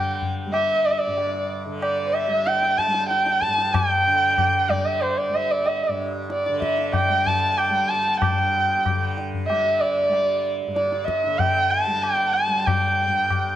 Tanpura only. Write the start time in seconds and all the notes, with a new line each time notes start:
Already playing: G2 D3 G3
0.46 G3
1.07 G2
1.66 D3
2.27 G3
2.87 G3
3.47 G2
4.07 D3
4.68 G3
5.29 G3
5.88 G2
6.49 D3
7.09 G3
7.69 G3
8.30 G2
8.90 D3
9.49 G3
10.09 G3
10.67 G2
11.26 D3
11.87 G3
12.47 G3
13.07 G2